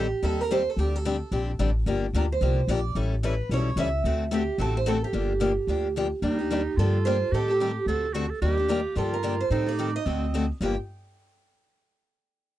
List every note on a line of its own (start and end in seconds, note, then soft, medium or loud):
0.00 0.12 A1 medium
0.00 0.25 G4 medium
0.23 0.66 D#2 medium
0.23 0.41 D#3 medium
0.23 0.41 G3 medium
0.23 0.42 C4 medium
0.23 0.42 G4 medium
0.23 0.42 A4 medium
0.23 0.41 A4 medium
0.41 0.51 A#4 medium
0.51 0.61 D#3 medium
0.51 0.61 G3 loud
0.51 0.61 C4 medium
0.51 0.61 G4 medium
0.51 0.61 A4 medium
0.51 0.70 C5 loud
0.70 0.79 A4 medium
0.77 1.21 D2 medium
0.77 0.96 D3 medium
0.77 0.96 G3 medium
0.77 0.97 C4 medium
0.77 0.96 D4 medium
0.77 0.96 G4 medium
0.77 0.97 G4 medium
0.96 1.76 A4 medium
1.05 1.15 D3 medium
1.05 1.15 G3 medium
1.05 1.15 C4 medium
1.05 1.16 D4 medium
1.05 1.16 G4 medium
1.32 1.55 A#1 medium
1.32 1.50 D3 medium
1.32 1.50 G3 medium
1.32 1.50 C4 medium
1.32 1.51 D4 medium
1.32 1.51 G4 medium
1.59 1.82 A1 medium
1.59 1.69 D3 medium
1.59 1.70 G3 medium
1.59 1.70 C4 medium
1.59 1.70 D4 medium
1.59 1.70 G4 medium
1.86 2.08 G1 medium
1.86 2.05 D3 medium
1.86 2.05 F3 medium
1.86 2.05 A#3 medium
1.86 2.05 D4 medium
1.86 2.06 G4 medium
2.13 2.37 D2 medium
2.13 2.24 D3 medium
2.13 2.25 F3 medium
2.13 2.25 A#3 medium
2.13 2.25 D4 medium
2.13 2.25 G4 medium
2.13 2.22 A#4 medium
2.32 2.67 C5 medium
2.41 2.64 C2 medium
2.41 2.59 D3 medium
2.41 2.60 F3 medium
2.41 2.60 A#3 medium
2.41 2.60 D4 medium
2.41 2.60 G4 medium
2.67 2.91 A#1 medium
2.67 2.79 D3 medium
2.67 2.79 F3 medium
2.67 2.79 A#3 medium
2.67 2.79 D4 loud
2.67 2.79 G4 medium
2.67 2.95 D5 medium
2.95 3.39 A1 medium
2.95 3.14 E3 medium
2.95 3.14 G3 medium
2.95 3.14 C#4 medium
2.95 3.14 E4 medium
2.95 3.14 A4 medium
3.23 3.33 E3 medium
3.23 3.33 G3 medium
3.23 3.34 C#4 medium
3.23 3.34 E4 medium
3.23 3.34 A4 medium
3.23 3.49 B4 medium
3.49 3.73 B1 medium
3.49 3.69 E3 medium
3.49 3.69 G3 medium
3.49 3.69 C#4 medium
3.49 3.69 E4 medium
3.49 3.69 A4 medium
3.53 3.77 C#5 medium
3.76 4.00 C#2 medium
3.76 3.87 E3 medium
3.76 3.87 G3 medium
3.76 3.88 C#4 medium
3.76 3.88 E4 medium
3.76 3.88 A4 medium
3.76 4.04 E5 medium
4.04 4.48 D2 medium
4.04 4.23 D3 medium
4.04 4.23 A3 medium
4.04 4.23 C4 medium
4.04 4.24 F#4 medium
4.04 4.24 A4 medium
4.31 4.42 D3 medium
4.31 4.42 A3 medium
4.31 4.42 C4 medium
4.31 4.42 F#4 medium
4.31 4.61 G4 medium
4.31 4.42 A4 medium
4.58 5.02 A1 medium
4.58 4.77 D3 medium
4.58 4.77 A3 medium
4.58 4.78 C4 medium
4.58 4.77 F#4 medium
4.58 4.78 A4 medium
4.58 4.75 A4 loud
4.77 4.88 C5 medium
4.86 4.96 D3 medium
4.86 4.96 A3 medium
4.86 4.96 C4 medium
4.86 4.97 F#4 medium
4.86 4.97 A4 loud
4.86 5.03 A4 medium
5.04 5.93 G4 medium
5.13 5.57 G1 medium
5.13 5.32 D3 medium
5.13 5.32 F3 medium
5.13 5.32 A#3 medium
5.13 5.32 D4 medium
5.13 5.32 G4 medium
5.40 5.51 D3 medium
5.40 5.51 F3 medium
5.40 5.51 A#3 loud
5.40 5.51 D4 medium
5.40 5.51 G4 medium
5.67 6.11 D2 medium
5.67 5.87 D3 medium
5.67 5.87 F3 medium
5.67 5.87 A#3 medium
5.67 5.87 D4 medium
5.67 5.87 G4 medium
5.96 6.06 D3 medium
5.96 6.06 F3 medium
5.96 6.07 A#3 medium
5.96 6.06 D4 medium
5.96 6.07 G4 loud
6.22 6.66 D#2 medium
6.22 6.37 D#3 medium
6.22 6.38 G3 medium
6.22 6.37 A#3 medium
6.22 6.38 D4 medium
6.22 6.79 D#4 medium
6.22 6.37 G4 medium
6.39 6.50 A#3 soft
6.39 6.51 D4 soft
6.39 6.50 G4 soft
6.50 6.60 D#3 medium
6.50 6.61 G3 medium
6.50 6.61 A#3 medium
6.50 6.61 D4 medium
6.50 6.61 G4 medium
6.50 6.79 G4 medium
6.77 7.21 G2 medium
6.77 6.96 D3 medium
6.77 6.97 F3 medium
6.77 6.97 A#3 medium
6.77 6.97 D4 medium
6.77 7.33 F4 medium
6.77 6.97 G4 medium
6.77 7.06 A4 medium
7.05 7.15 D3 medium
7.05 7.16 F3 medium
7.05 7.16 A#3 medium
7.05 7.16 D4 medium
7.05 7.16 G4 medium
7.05 7.33 C5 medium
7.32 7.76 A2 medium
7.32 7.48 D#3 medium
7.32 7.48 G3 medium
7.32 7.48 C4 medium
7.32 7.87 G4 loud
7.32 7.48 G4 medium
7.32 7.51 A4 medium
7.32 7.47 A4 medium
7.48 7.60 C4 soft
7.48 7.60 G4 soft
7.48 7.76 G4 medium
7.48 7.59 A4 medium
7.60 7.70 D#3 medium
7.60 7.70 G3 medium
7.60 7.71 C4 medium
7.60 7.71 G4 medium
7.60 7.71 A4 medium
7.86 8.30 D2 medium
7.86 8.06 D3 medium
7.86 8.06 A3 medium
7.86 8.06 C4 medium
7.86 8.06 F#4 medium
7.86 8.15 A4 loud
7.86 8.06 A4 medium
8.13 8.25 D3 medium
8.13 8.25 A3 medium
8.13 8.25 C4 medium
8.13 8.32 F#4 medium
8.13 8.25 F#4 medium
8.13 8.25 A4 medium
8.30 8.41 A4 medium
8.42 8.86 D#2 medium
8.42 8.57 D#3 medium
8.42 8.57 G3 medium
8.42 8.57 A#3 medium
8.42 8.57 D4 medium
8.42 8.98 G4 medium
8.42 8.56 G4 medium
8.57 8.68 A#3 soft
8.57 8.69 D4 medium
8.57 8.69 G4 medium
8.68 8.79 D#3 medium
8.68 8.79 G3 medium
8.68 8.79 A#3 medium
8.68 8.80 D4 medium
8.68 8.98 F4 medium
8.68 8.80 G4 medium
8.95 9.40 G2 medium
8.95 9.14 D3 medium
8.95 9.15 F3 medium
8.95 9.15 A#3 medium
8.95 9.15 D4 medium
8.95 9.51 F4 medium
8.95 9.15 G4 medium
8.95 9.13 A4 medium
9.14 9.38 A#4 medium
9.23 9.34 D3 medium
9.23 9.34 F3 medium
9.23 9.34 A#3 medium
9.23 9.34 D4 medium
9.23 9.34 G4 loud
9.40 9.68 C5 medium
9.50 9.95 A2 medium
9.50 9.66 D#3 medium
9.50 9.66 G3 medium
9.50 9.66 C4 medium
9.50 10.07 D#4 medium
9.50 9.66 G4 medium
9.50 9.65 A4 medium
9.66 9.78 C4 soft
9.66 9.78 G4 soft
9.66 9.78 A4 medium
9.66 9.95 D5 medium
9.79 9.89 D#3 medium
9.79 9.89 G3 medium
9.79 9.89 C4 medium
9.79 9.89 G4 medium
9.79 9.90 A4 medium
9.96 10.46 D#5 medium
10.06 10.50 D2 medium
10.06 10.24 D3 medium
10.06 10.25 A3 medium
10.06 10.49 C4 medium
10.06 10.25 C4 medium
10.06 10.25 F#4 medium
10.06 10.25 A4 medium
10.34 10.44 D3 medium
10.34 10.44 A3 medium
10.34 10.44 C4 medium
10.34 10.45 F#4 medium
10.34 10.45 A4 medium
10.61 10.75 G1 medium
10.61 10.73 G2 medium
10.61 10.74 D3 medium
10.61 10.74 F3 medium
10.61 10.75 A#3 medium
10.61 10.74 A#3 medium
10.61 10.74 D4 medium
10.61 10.75 G4 medium
10.61 10.77 G5 medium